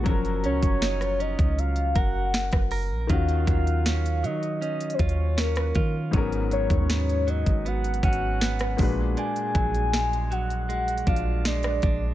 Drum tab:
HH |x-x-x-x-x-x-x-x-x-x-x---x-x-o---|x-x-x-x-x-x-x-x-x-xxxx--x-x-x---|x-x-x-x-x-x-x-x-x-xxxx--x-x-o---|x-x-x-x-x-x-x-x-x-xxxx--x-x-x---|
SD |--------o-r-------------o-r-----|--------o---------------o-r-----|--------o---------------o-r-----|--------o---------------o-r-----|
BD |o-----o-------o-----o-----o-----|o---o---------------o-------o---|o-----o-------o-----o-------o---|----o---------------o-------o---|